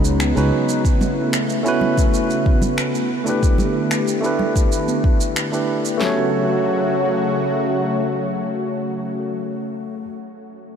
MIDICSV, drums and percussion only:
0, 0, Header, 1, 2, 480
1, 0, Start_track
1, 0, Tempo, 645161
1, 628, Time_signature, 4, 2, 24, 8
1, 8007, End_track
2, 0, Start_track
2, 0, Title_t, "Drums"
2, 35, Note_on_c, 9, 82, 68
2, 109, Note_off_c, 9, 82, 0
2, 149, Note_on_c, 9, 26, 75
2, 153, Note_on_c, 9, 82, 54
2, 223, Note_off_c, 9, 26, 0
2, 228, Note_off_c, 9, 82, 0
2, 273, Note_on_c, 9, 82, 32
2, 347, Note_off_c, 9, 82, 0
2, 514, Note_on_c, 9, 82, 65
2, 588, Note_off_c, 9, 82, 0
2, 630, Note_on_c, 9, 36, 105
2, 634, Note_on_c, 9, 82, 58
2, 705, Note_off_c, 9, 36, 0
2, 709, Note_off_c, 9, 82, 0
2, 751, Note_on_c, 9, 63, 86
2, 753, Note_on_c, 9, 64, 83
2, 756, Note_on_c, 9, 82, 33
2, 825, Note_off_c, 9, 63, 0
2, 827, Note_off_c, 9, 64, 0
2, 830, Note_off_c, 9, 82, 0
2, 990, Note_on_c, 9, 26, 69
2, 995, Note_on_c, 9, 82, 63
2, 1065, Note_off_c, 9, 26, 0
2, 1069, Note_off_c, 9, 82, 0
2, 1113, Note_on_c, 9, 82, 53
2, 1187, Note_off_c, 9, 82, 0
2, 1235, Note_on_c, 9, 82, 32
2, 1309, Note_off_c, 9, 82, 0
2, 1348, Note_on_c, 9, 64, 67
2, 1423, Note_off_c, 9, 64, 0
2, 1470, Note_on_c, 9, 36, 97
2, 1473, Note_on_c, 9, 82, 63
2, 1545, Note_off_c, 9, 36, 0
2, 1548, Note_off_c, 9, 82, 0
2, 1592, Note_on_c, 9, 82, 53
2, 1666, Note_off_c, 9, 82, 0
2, 1712, Note_on_c, 9, 82, 33
2, 1787, Note_off_c, 9, 82, 0
2, 1830, Note_on_c, 9, 36, 107
2, 1904, Note_off_c, 9, 36, 0
2, 1947, Note_on_c, 9, 64, 74
2, 1952, Note_on_c, 9, 82, 64
2, 2021, Note_off_c, 9, 64, 0
2, 2026, Note_off_c, 9, 82, 0
2, 2067, Note_on_c, 9, 26, 72
2, 2071, Note_on_c, 9, 82, 55
2, 2141, Note_off_c, 9, 26, 0
2, 2146, Note_off_c, 9, 82, 0
2, 2193, Note_on_c, 9, 82, 31
2, 2268, Note_off_c, 9, 82, 0
2, 2432, Note_on_c, 9, 82, 61
2, 2506, Note_off_c, 9, 82, 0
2, 2550, Note_on_c, 9, 36, 100
2, 2553, Note_on_c, 9, 82, 49
2, 2625, Note_off_c, 9, 36, 0
2, 2627, Note_off_c, 9, 82, 0
2, 2665, Note_on_c, 9, 63, 84
2, 2666, Note_on_c, 9, 64, 64
2, 2673, Note_on_c, 9, 82, 32
2, 2740, Note_off_c, 9, 63, 0
2, 2740, Note_off_c, 9, 64, 0
2, 2748, Note_off_c, 9, 82, 0
2, 2909, Note_on_c, 9, 26, 66
2, 2913, Note_on_c, 9, 82, 63
2, 2983, Note_off_c, 9, 26, 0
2, 2987, Note_off_c, 9, 82, 0
2, 3033, Note_on_c, 9, 82, 50
2, 3108, Note_off_c, 9, 82, 0
2, 3154, Note_on_c, 9, 82, 29
2, 3228, Note_off_c, 9, 82, 0
2, 3269, Note_on_c, 9, 64, 66
2, 3343, Note_off_c, 9, 64, 0
2, 3390, Note_on_c, 9, 36, 95
2, 3394, Note_on_c, 9, 82, 64
2, 3465, Note_off_c, 9, 36, 0
2, 3468, Note_off_c, 9, 82, 0
2, 3513, Note_on_c, 9, 82, 53
2, 3587, Note_off_c, 9, 82, 0
2, 3632, Note_on_c, 9, 63, 59
2, 3634, Note_on_c, 9, 82, 33
2, 3707, Note_off_c, 9, 63, 0
2, 3708, Note_off_c, 9, 82, 0
2, 3750, Note_on_c, 9, 36, 98
2, 3824, Note_off_c, 9, 36, 0
2, 3874, Note_on_c, 9, 82, 64
2, 3948, Note_off_c, 9, 82, 0
2, 3990, Note_on_c, 9, 26, 66
2, 3994, Note_on_c, 9, 82, 50
2, 4064, Note_off_c, 9, 26, 0
2, 4069, Note_off_c, 9, 82, 0
2, 4116, Note_on_c, 9, 82, 31
2, 4190, Note_off_c, 9, 82, 0
2, 4355, Note_on_c, 9, 82, 61
2, 4429, Note_off_c, 9, 82, 0
2, 4469, Note_on_c, 9, 38, 90
2, 4469, Note_on_c, 9, 39, 78
2, 4543, Note_off_c, 9, 38, 0
2, 4543, Note_off_c, 9, 39, 0
2, 8007, End_track
0, 0, End_of_file